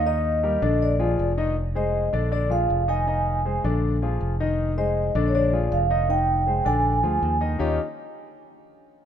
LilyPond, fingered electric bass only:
\new Staff \with { instrumentName = "Fingered electric bass" } { \clef bass \time 4/4 \key ees \major \tempo 4 = 159 ees,4. bes,,4. f,,4~ | f,,4. bes,,4. f,,4~ | f,,4. bes,,4. f,,4~ | f,,4. bes,,4. f,,4~ |
f,,4. bes,,4 d,8 ees,4 | ees,8 r2. r8 | }